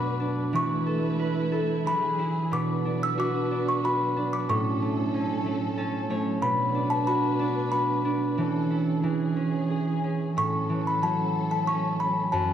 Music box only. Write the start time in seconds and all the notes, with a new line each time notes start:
Already playing: D6
0.56 C#6
1.87 B5
2.53 D6
3.03 E6
3.20 D6
3.68 C#6
3.85 B5
4.33 D6
4.50 C#6
6.42 B5
6.90 A5
7.07 B5
7.72 B5
10.38 C#6
10.87 B5
11.03 A5
11.51 A5
11.67 C#6
12.00 B5
12.32 A5